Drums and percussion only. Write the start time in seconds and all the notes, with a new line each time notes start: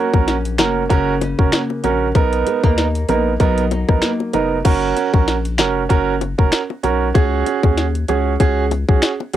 0.14 kick, high bongo
0.28 snare, closed hi-hat
0.45 closed hi-hat
0.58 finger snap, snare, closed hi-hat, low bongo
0.90 kick, closed hi-hat, high bongo
1.21 closed hi-hat, high bongo
1.39 kick
1.52 finger snap, snare, closed hi-hat
1.70 high bongo
1.84 closed hi-hat, low bongo
2.15 kick, closed hi-hat, high bongo
2.33 closed hi-hat
2.47 closed hi-hat, high bongo
2.64 kick, high bongo
2.78 snare, closed hi-hat
2.95 closed hi-hat
3.09 closed hi-hat, low bongo
3.40 kick, closed hi-hat, high bongo
3.58 closed hi-hat
3.71 closed hi-hat, high bongo
3.89 kick, cross-stick, high bongo
4.02 finger snap, snare, closed hi-hat
4.20 high bongo
4.33 closed hi-hat, low bongo
4.65 kick, closed hi-hat, crash, high bongo
4.97 closed hi-hat, high bongo
5.14 kick, high bongo
5.28 snare, closed hi-hat
5.45 closed hi-hat
5.58 finger snap, snare, closed hi-hat, low bongo
5.90 kick, closed hi-hat, high bongo
6.21 closed hi-hat, high bongo
6.39 kick
6.52 finger snap, snare, closed hi-hat
6.70 high bongo
6.84 closed hi-hat, low bongo
7.15 kick, closed hi-hat, high bongo
7.47 closed hi-hat, high bongo
7.63 kick, high bongo
7.78 snare, closed hi-hat
7.95 closed hi-hat
8.08 closed hi-hat, low bongo
8.40 kick, closed hi-hat, high bongo
8.71 closed hi-hat, high bongo
8.89 kick
9.02 finger snap, snare, closed hi-hat
9.20 high bongo
9.33 closed hi-hat